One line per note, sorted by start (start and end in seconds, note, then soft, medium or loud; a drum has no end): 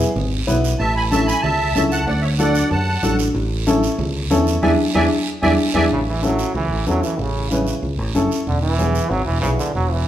0.00 short guiro medium
0.15 0.41 G#1 medium
0.15 low conga medium
0.15 long guiro medium
0.47 0.73 B1 medium
0.47 0.70 B3 medium
0.47 0.70 E4 medium
0.47 0.70 B4 loud
0.47 high conga medium
0.47 short guiro medium
0.64 short guiro medium
0.79 1.31 A1 loud
0.79 0.95 E5 medium
0.79 0.94 A5 loud
0.79 long guiro medium
0.96 1.03 G#5 medium
0.96 1.03 B5 medium
1.11 1.34 C#4 medium
1.11 1.34 E4 medium
1.11 1.34 A4 medium
1.11 1.27 E5 medium
1.11 1.28 A5 loud
1.11 high conga medium
1.11 short guiro medium
1.26 1.42 G#5 medium
1.26 1.42 B5 loud
1.26 short guiro medium
1.42 1.69 C#2 medium
1.42 1.73 E5 medium
1.42 1.72 A5 loud
1.42 low conga medium
1.42 long guiro medium
1.74 2.01 C#2 medium
1.74 1.98 C#4 medium
1.74 1.98 E4 medium
1.74 1.98 A4 medium
1.74 1.83 E5 medium
1.74 1.81 A5 loud
1.74 high conga medium
1.74 short guiro medium
1.90 2.04 F#5 medium
1.90 2.05 A5 loud
1.90 short guiro medium
2.06 2.58 D2 loud
2.06 2.23 D5 medium
2.06 2.21 F#5 medium
2.06 low conga medium
2.06 long guiro medium
2.21 2.31 C#5 medium
2.21 2.29 E5 medium
2.38 2.62 D4 medium
2.38 2.62 F#4 medium
2.38 2.62 A4 medium
2.38 2.70 D5 medium
2.38 2.69 F#5 loud
2.38 high conga medium
2.38 short guiro medium
2.55 short guiro medium
2.71 2.97 F#2 loud
2.71 3.17 F#5 medium
2.71 3.16 A5 medium
2.71 low conga medium
2.71 long guiro medium
3.03 3.29 A1 medium
3.03 3.25 D4 medium
3.03 3.26 F#4 medium
3.03 3.26 A4 medium
3.03 high conga medium
3.03 short guiro medium
3.19 short guiro medium
3.34 3.86 A1 loud
3.34 long guiro medium
3.67 3.89 C#4 medium
3.67 3.89 E4 medium
3.67 3.90 A4 loud
3.67 high conga medium
3.67 short guiro medium
3.83 short guiro medium
3.98 4.24 C#2 loud
3.98 low conga medium
3.98 long guiro medium
4.30 4.56 E2 medium
4.30 4.53 C#4 medium
4.30 4.53 E4 medium
4.30 4.53 A4 loud
4.30 high conga medium
4.30 low conga medium
4.30 short guiro medium
4.47 short guiro medium
4.62 4.75 E2 loud
4.62 4.73 D4 loud
4.62 4.73 E4 loud
4.62 4.73 G#4 loud
4.62 4.73 D5 loud
4.62 4.73 E5 medium
4.62 4.73 G#5 medium
4.62 high conga loud
4.62 long guiro loud
4.94 5.07 E2 medium
4.94 5.05 D4 loud
4.94 5.05 E4 loud
4.94 5.05 G#4 loud
4.94 5.05 D5 loud
4.94 5.05 E5 loud
4.94 5.05 G#5 loud
4.94 high conga loud
4.94 long guiro loud
5.42 5.55 E2 medium
5.42 5.54 D4 medium
5.42 5.53 E4 loud
5.42 5.54 G#4 medium
5.42 5.53 D5 loud
5.42 5.53 E5 loud
5.42 5.53 G#5 medium
5.42 high conga loud
5.42 long guiro loud
5.74 5.87 E2 loud
5.74 5.86 D4 medium
5.74 5.85 E4 loud
5.74 5.86 G#4 loud
5.74 5.85 D5 loud
5.74 5.85 E5 loud
5.74 5.85 G#5 loud
5.74 high conga loud
5.74 long guiro loud
5.91 6.42 A1 medium
5.91 5.99 C#3 medium
5.91 high conga soft
5.91 long guiro medium
6.08 6.25 E3 medium
6.22 6.55 F#3 loud
6.22 6.45 C#4 medium
6.22 6.45 E4 medium
6.22 6.46 A4 medium
6.22 high conga medium
6.22 short guiro medium
6.39 short guiro medium
6.54 6.67 C#2 medium
6.54 6.85 E3 medium
6.54 high conga soft
6.54 long guiro medium
6.71 6.84 A1 medium
6.86 7.00 E2 medium
6.86 7.06 F#3 medium
6.86 7.09 C#4 medium
6.86 7.10 E4 medium
6.86 7.10 A4 medium
6.86 high conga medium
6.86 short guiro medium
7.03 7.21 E3 medium
7.03 short guiro medium
7.19 7.70 A1 medium
7.19 7.51 C#3 medium
7.19 high conga soft
7.19 long guiro medium
7.51 7.81 C#3 medium
7.51 7.73 C#4 medium
7.51 7.74 E4 medium
7.51 7.74 B4 medium
7.51 high conga medium
7.51 short guiro medium
7.67 short guiro medium
7.82 7.96 C#2 medium
7.82 long guiro medium
7.99 8.12 A1 medium
8.14 8.28 F#1 medium
8.14 8.38 C#4 medium
8.14 8.38 E4 medium
8.14 8.38 A4 medium
8.14 high conga medium
8.14 short guiro medium
8.31 short guiro medium
8.47 8.98 E1 medium
8.47 8.61 D3 medium
8.47 high conga soft
8.47 long guiro medium
8.62 9.11 E3 medium
8.79 9.02 B3 medium
8.79 9.02 E4 medium
8.79 9.02 G#4 medium
8.79 high conga medium
8.79 short guiro medium
8.95 short guiro medium
9.09 9.24 G#1 medium
9.09 9.25 F#3 loud
9.09 high conga soft
9.09 long guiro medium
9.25 9.40 E1 medium
9.25 9.40 E3 medium
9.41 9.56 B1 medium
9.41 9.49 C#3 medium
9.41 9.66 B3 medium
9.41 9.66 E4 medium
9.41 9.66 G#4 medium
9.41 high conga medium
9.41 short guiro medium
9.57 9.73 D3 medium
9.57 short guiro medium
9.74 10.08 E1 medium
9.74 9.93 F#3 medium
9.74 high conga soft
9.74 long guiro medium
9.91 10.08 E3 medium